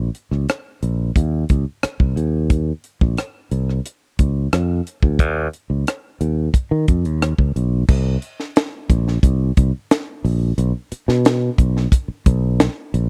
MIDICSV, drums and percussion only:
0, 0, Header, 1, 2, 480
1, 0, Start_track
1, 0, Tempo, 671892
1, 1792, Time_signature, 4, 2, 24, 8
1, 9357, End_track
2, 0, Start_track
2, 0, Title_t, "Drums"
2, 106, Note_on_c, 9, 42, 58
2, 177, Note_off_c, 9, 42, 0
2, 231, Note_on_c, 9, 37, 31
2, 302, Note_off_c, 9, 37, 0
2, 348, Note_on_c, 9, 42, 70
2, 355, Note_on_c, 9, 37, 94
2, 419, Note_off_c, 9, 42, 0
2, 426, Note_off_c, 9, 37, 0
2, 590, Note_on_c, 9, 42, 55
2, 662, Note_off_c, 9, 42, 0
2, 827, Note_on_c, 9, 36, 80
2, 830, Note_on_c, 9, 42, 75
2, 898, Note_off_c, 9, 36, 0
2, 902, Note_off_c, 9, 42, 0
2, 1065, Note_on_c, 9, 42, 57
2, 1071, Note_on_c, 9, 36, 75
2, 1136, Note_off_c, 9, 42, 0
2, 1142, Note_off_c, 9, 36, 0
2, 1308, Note_on_c, 9, 42, 70
2, 1309, Note_on_c, 9, 37, 97
2, 1380, Note_off_c, 9, 42, 0
2, 1381, Note_off_c, 9, 37, 0
2, 1428, Note_on_c, 9, 36, 74
2, 1500, Note_off_c, 9, 36, 0
2, 1552, Note_on_c, 9, 42, 58
2, 1624, Note_off_c, 9, 42, 0
2, 1785, Note_on_c, 9, 42, 77
2, 1787, Note_on_c, 9, 36, 95
2, 1857, Note_off_c, 9, 42, 0
2, 1858, Note_off_c, 9, 36, 0
2, 2028, Note_on_c, 9, 42, 58
2, 2100, Note_off_c, 9, 42, 0
2, 2152, Note_on_c, 9, 36, 85
2, 2224, Note_off_c, 9, 36, 0
2, 2268, Note_on_c, 9, 42, 74
2, 2275, Note_on_c, 9, 37, 99
2, 2339, Note_off_c, 9, 42, 0
2, 2346, Note_off_c, 9, 37, 0
2, 2511, Note_on_c, 9, 42, 56
2, 2583, Note_off_c, 9, 42, 0
2, 2639, Note_on_c, 9, 37, 33
2, 2711, Note_off_c, 9, 37, 0
2, 2755, Note_on_c, 9, 42, 83
2, 2826, Note_off_c, 9, 42, 0
2, 2993, Note_on_c, 9, 42, 61
2, 2994, Note_on_c, 9, 36, 69
2, 3064, Note_off_c, 9, 42, 0
2, 3065, Note_off_c, 9, 36, 0
2, 3235, Note_on_c, 9, 42, 71
2, 3236, Note_on_c, 9, 37, 96
2, 3306, Note_off_c, 9, 42, 0
2, 3307, Note_off_c, 9, 37, 0
2, 3478, Note_on_c, 9, 42, 60
2, 3549, Note_off_c, 9, 42, 0
2, 3590, Note_on_c, 9, 36, 74
2, 3661, Note_off_c, 9, 36, 0
2, 3709, Note_on_c, 9, 36, 102
2, 3710, Note_on_c, 9, 42, 80
2, 3780, Note_off_c, 9, 36, 0
2, 3781, Note_off_c, 9, 42, 0
2, 3954, Note_on_c, 9, 42, 61
2, 4025, Note_off_c, 9, 42, 0
2, 4195, Note_on_c, 9, 42, 75
2, 4202, Note_on_c, 9, 37, 95
2, 4267, Note_off_c, 9, 42, 0
2, 4274, Note_off_c, 9, 37, 0
2, 4435, Note_on_c, 9, 42, 58
2, 4507, Note_off_c, 9, 42, 0
2, 4671, Note_on_c, 9, 36, 77
2, 4676, Note_on_c, 9, 42, 73
2, 4742, Note_off_c, 9, 36, 0
2, 4747, Note_off_c, 9, 42, 0
2, 4914, Note_on_c, 9, 42, 58
2, 4917, Note_on_c, 9, 36, 76
2, 4986, Note_off_c, 9, 42, 0
2, 4988, Note_off_c, 9, 36, 0
2, 5037, Note_on_c, 9, 42, 48
2, 5109, Note_off_c, 9, 42, 0
2, 5159, Note_on_c, 9, 42, 68
2, 5161, Note_on_c, 9, 37, 98
2, 5231, Note_off_c, 9, 42, 0
2, 5232, Note_off_c, 9, 37, 0
2, 5275, Note_on_c, 9, 36, 71
2, 5347, Note_off_c, 9, 36, 0
2, 5403, Note_on_c, 9, 42, 62
2, 5474, Note_off_c, 9, 42, 0
2, 5634, Note_on_c, 9, 36, 115
2, 5636, Note_on_c, 9, 49, 99
2, 5705, Note_off_c, 9, 36, 0
2, 5707, Note_off_c, 9, 49, 0
2, 5874, Note_on_c, 9, 42, 69
2, 5945, Note_off_c, 9, 42, 0
2, 5998, Note_on_c, 9, 38, 37
2, 6070, Note_off_c, 9, 38, 0
2, 6115, Note_on_c, 9, 42, 82
2, 6122, Note_on_c, 9, 38, 109
2, 6187, Note_off_c, 9, 42, 0
2, 6193, Note_off_c, 9, 38, 0
2, 6355, Note_on_c, 9, 36, 84
2, 6359, Note_on_c, 9, 42, 67
2, 6427, Note_off_c, 9, 36, 0
2, 6430, Note_off_c, 9, 42, 0
2, 6485, Note_on_c, 9, 38, 35
2, 6556, Note_off_c, 9, 38, 0
2, 6594, Note_on_c, 9, 36, 84
2, 6597, Note_on_c, 9, 42, 89
2, 6665, Note_off_c, 9, 36, 0
2, 6669, Note_off_c, 9, 42, 0
2, 6837, Note_on_c, 9, 42, 63
2, 6839, Note_on_c, 9, 36, 85
2, 6909, Note_off_c, 9, 42, 0
2, 6910, Note_off_c, 9, 36, 0
2, 7081, Note_on_c, 9, 42, 86
2, 7082, Note_on_c, 9, 38, 105
2, 7153, Note_off_c, 9, 42, 0
2, 7154, Note_off_c, 9, 38, 0
2, 7324, Note_on_c, 9, 46, 52
2, 7396, Note_off_c, 9, 46, 0
2, 7559, Note_on_c, 9, 42, 85
2, 7630, Note_off_c, 9, 42, 0
2, 7800, Note_on_c, 9, 42, 65
2, 7871, Note_off_c, 9, 42, 0
2, 7922, Note_on_c, 9, 38, 37
2, 7993, Note_off_c, 9, 38, 0
2, 8038, Note_on_c, 9, 42, 84
2, 8045, Note_on_c, 9, 38, 123
2, 8110, Note_off_c, 9, 42, 0
2, 8117, Note_off_c, 9, 38, 0
2, 8275, Note_on_c, 9, 36, 81
2, 8281, Note_on_c, 9, 42, 66
2, 8347, Note_off_c, 9, 36, 0
2, 8352, Note_off_c, 9, 42, 0
2, 8406, Note_on_c, 9, 38, 37
2, 8478, Note_off_c, 9, 38, 0
2, 8515, Note_on_c, 9, 36, 86
2, 8521, Note_on_c, 9, 42, 92
2, 8586, Note_off_c, 9, 36, 0
2, 8592, Note_off_c, 9, 42, 0
2, 8758, Note_on_c, 9, 42, 68
2, 8759, Note_on_c, 9, 36, 84
2, 8830, Note_off_c, 9, 42, 0
2, 8831, Note_off_c, 9, 36, 0
2, 9001, Note_on_c, 9, 42, 85
2, 9002, Note_on_c, 9, 38, 112
2, 9072, Note_off_c, 9, 42, 0
2, 9073, Note_off_c, 9, 38, 0
2, 9245, Note_on_c, 9, 42, 77
2, 9317, Note_off_c, 9, 42, 0
2, 9357, End_track
0, 0, End_of_file